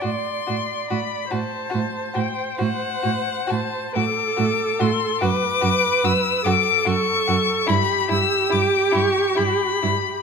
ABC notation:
X:1
M:12/8
L:1/8
Q:3/8=47
K:Dmix
V:1 name="Violin"
c'2 b a2 g f2 a d'2 c' | [K:D] d'2 e' d' c'2 b e' d' c' b2 |]
V:2 name="Viola"
d3 c6 A3 | [K:D] B3 A3 G6 |]
V:3 name="Violin"
F F F F F F F F F F F F | [K:D] F F F F F F E E E E E E |]
V:4 name="Cello" clef=bass
A,, A,, A,, A,, A,, A,, A,, A,, A,, A,, A,, A,, | [K:D] F,, F,, F,, F,, F,, F,, G,, G,, G,, G,, G,, G,, |]